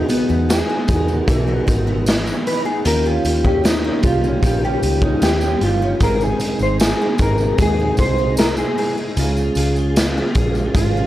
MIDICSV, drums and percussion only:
0, 0, Header, 1, 2, 480
1, 0, Start_track
1, 0, Key_signature, -4, "major"
1, 0, Tempo, 789578
1, 1737, Time_signature, 4, 2, 24, 8
1, 6728, End_track
2, 0, Start_track
2, 0, Title_t, "Drums"
2, 57, Note_on_c, 9, 54, 49
2, 60, Note_on_c, 9, 42, 72
2, 118, Note_off_c, 9, 54, 0
2, 121, Note_off_c, 9, 42, 0
2, 181, Note_on_c, 9, 54, 30
2, 242, Note_off_c, 9, 54, 0
2, 304, Note_on_c, 9, 42, 89
2, 305, Note_on_c, 9, 54, 92
2, 307, Note_on_c, 9, 38, 114
2, 365, Note_off_c, 9, 42, 0
2, 366, Note_off_c, 9, 54, 0
2, 368, Note_off_c, 9, 38, 0
2, 534, Note_on_c, 9, 42, 74
2, 537, Note_on_c, 9, 54, 46
2, 539, Note_on_c, 9, 36, 94
2, 595, Note_off_c, 9, 42, 0
2, 598, Note_off_c, 9, 54, 0
2, 600, Note_off_c, 9, 36, 0
2, 660, Note_on_c, 9, 54, 28
2, 720, Note_off_c, 9, 54, 0
2, 777, Note_on_c, 9, 36, 111
2, 781, Note_on_c, 9, 54, 44
2, 782, Note_on_c, 9, 42, 85
2, 838, Note_off_c, 9, 36, 0
2, 842, Note_off_c, 9, 42, 0
2, 842, Note_off_c, 9, 54, 0
2, 1020, Note_on_c, 9, 36, 89
2, 1020, Note_on_c, 9, 42, 68
2, 1020, Note_on_c, 9, 54, 45
2, 1080, Note_off_c, 9, 54, 0
2, 1081, Note_off_c, 9, 36, 0
2, 1081, Note_off_c, 9, 42, 0
2, 1255, Note_on_c, 9, 54, 70
2, 1262, Note_on_c, 9, 42, 77
2, 1268, Note_on_c, 9, 38, 103
2, 1316, Note_off_c, 9, 54, 0
2, 1323, Note_off_c, 9, 42, 0
2, 1329, Note_off_c, 9, 38, 0
2, 1382, Note_on_c, 9, 54, 46
2, 1443, Note_off_c, 9, 54, 0
2, 1501, Note_on_c, 9, 42, 57
2, 1562, Note_off_c, 9, 42, 0
2, 1735, Note_on_c, 9, 42, 87
2, 1742, Note_on_c, 9, 54, 46
2, 1796, Note_off_c, 9, 42, 0
2, 1802, Note_off_c, 9, 54, 0
2, 1974, Note_on_c, 9, 54, 47
2, 1978, Note_on_c, 9, 42, 68
2, 2034, Note_off_c, 9, 54, 0
2, 2039, Note_off_c, 9, 42, 0
2, 2095, Note_on_c, 9, 36, 88
2, 2156, Note_off_c, 9, 36, 0
2, 2218, Note_on_c, 9, 42, 90
2, 2221, Note_on_c, 9, 38, 109
2, 2222, Note_on_c, 9, 54, 86
2, 2279, Note_off_c, 9, 42, 0
2, 2282, Note_off_c, 9, 38, 0
2, 2283, Note_off_c, 9, 54, 0
2, 2448, Note_on_c, 9, 42, 73
2, 2453, Note_on_c, 9, 54, 43
2, 2454, Note_on_c, 9, 36, 95
2, 2509, Note_off_c, 9, 42, 0
2, 2513, Note_off_c, 9, 54, 0
2, 2514, Note_off_c, 9, 36, 0
2, 2576, Note_on_c, 9, 54, 29
2, 2637, Note_off_c, 9, 54, 0
2, 2691, Note_on_c, 9, 36, 103
2, 2696, Note_on_c, 9, 42, 89
2, 2696, Note_on_c, 9, 54, 47
2, 2752, Note_off_c, 9, 36, 0
2, 2756, Note_off_c, 9, 54, 0
2, 2757, Note_off_c, 9, 42, 0
2, 2934, Note_on_c, 9, 54, 46
2, 2937, Note_on_c, 9, 42, 68
2, 2994, Note_off_c, 9, 54, 0
2, 2998, Note_off_c, 9, 42, 0
2, 3050, Note_on_c, 9, 36, 101
2, 3111, Note_off_c, 9, 36, 0
2, 3172, Note_on_c, 9, 54, 74
2, 3174, Note_on_c, 9, 42, 82
2, 3180, Note_on_c, 9, 38, 108
2, 3233, Note_off_c, 9, 54, 0
2, 3234, Note_off_c, 9, 42, 0
2, 3241, Note_off_c, 9, 38, 0
2, 3289, Note_on_c, 9, 54, 41
2, 3349, Note_off_c, 9, 54, 0
2, 3412, Note_on_c, 9, 42, 55
2, 3473, Note_off_c, 9, 42, 0
2, 3650, Note_on_c, 9, 42, 89
2, 3652, Note_on_c, 9, 36, 103
2, 3657, Note_on_c, 9, 54, 46
2, 3711, Note_off_c, 9, 42, 0
2, 3713, Note_off_c, 9, 36, 0
2, 3718, Note_off_c, 9, 54, 0
2, 3773, Note_on_c, 9, 54, 32
2, 3834, Note_off_c, 9, 54, 0
2, 3888, Note_on_c, 9, 54, 46
2, 3895, Note_on_c, 9, 42, 76
2, 3949, Note_off_c, 9, 54, 0
2, 3956, Note_off_c, 9, 42, 0
2, 4007, Note_on_c, 9, 54, 32
2, 4068, Note_off_c, 9, 54, 0
2, 4132, Note_on_c, 9, 54, 85
2, 4138, Note_on_c, 9, 42, 90
2, 4141, Note_on_c, 9, 38, 109
2, 4193, Note_off_c, 9, 54, 0
2, 4199, Note_off_c, 9, 42, 0
2, 4202, Note_off_c, 9, 38, 0
2, 4366, Note_on_c, 9, 54, 46
2, 4370, Note_on_c, 9, 42, 74
2, 4373, Note_on_c, 9, 36, 93
2, 4427, Note_off_c, 9, 54, 0
2, 4431, Note_off_c, 9, 42, 0
2, 4434, Note_off_c, 9, 36, 0
2, 4486, Note_on_c, 9, 54, 30
2, 4547, Note_off_c, 9, 54, 0
2, 4609, Note_on_c, 9, 54, 49
2, 4612, Note_on_c, 9, 36, 105
2, 4618, Note_on_c, 9, 42, 94
2, 4669, Note_off_c, 9, 54, 0
2, 4672, Note_off_c, 9, 36, 0
2, 4679, Note_off_c, 9, 42, 0
2, 4845, Note_on_c, 9, 54, 49
2, 4856, Note_on_c, 9, 36, 83
2, 4857, Note_on_c, 9, 42, 63
2, 4906, Note_off_c, 9, 54, 0
2, 4916, Note_off_c, 9, 36, 0
2, 4918, Note_off_c, 9, 42, 0
2, 5088, Note_on_c, 9, 54, 76
2, 5097, Note_on_c, 9, 42, 74
2, 5104, Note_on_c, 9, 38, 100
2, 5149, Note_off_c, 9, 54, 0
2, 5158, Note_off_c, 9, 42, 0
2, 5164, Note_off_c, 9, 38, 0
2, 5208, Note_on_c, 9, 54, 43
2, 5269, Note_off_c, 9, 54, 0
2, 5339, Note_on_c, 9, 46, 46
2, 5400, Note_off_c, 9, 46, 0
2, 5573, Note_on_c, 9, 54, 46
2, 5575, Note_on_c, 9, 42, 87
2, 5634, Note_off_c, 9, 54, 0
2, 5636, Note_off_c, 9, 42, 0
2, 5694, Note_on_c, 9, 54, 35
2, 5755, Note_off_c, 9, 54, 0
2, 5807, Note_on_c, 9, 54, 49
2, 5817, Note_on_c, 9, 42, 76
2, 5868, Note_off_c, 9, 54, 0
2, 5878, Note_off_c, 9, 42, 0
2, 5934, Note_on_c, 9, 54, 31
2, 5994, Note_off_c, 9, 54, 0
2, 6057, Note_on_c, 9, 54, 82
2, 6059, Note_on_c, 9, 42, 96
2, 6062, Note_on_c, 9, 38, 114
2, 6117, Note_off_c, 9, 54, 0
2, 6120, Note_off_c, 9, 42, 0
2, 6123, Note_off_c, 9, 38, 0
2, 6291, Note_on_c, 9, 42, 74
2, 6291, Note_on_c, 9, 54, 46
2, 6295, Note_on_c, 9, 36, 94
2, 6351, Note_off_c, 9, 54, 0
2, 6352, Note_off_c, 9, 42, 0
2, 6356, Note_off_c, 9, 36, 0
2, 6413, Note_on_c, 9, 54, 29
2, 6474, Note_off_c, 9, 54, 0
2, 6533, Note_on_c, 9, 36, 111
2, 6535, Note_on_c, 9, 54, 45
2, 6538, Note_on_c, 9, 42, 98
2, 6594, Note_off_c, 9, 36, 0
2, 6596, Note_off_c, 9, 54, 0
2, 6599, Note_off_c, 9, 42, 0
2, 6728, End_track
0, 0, End_of_file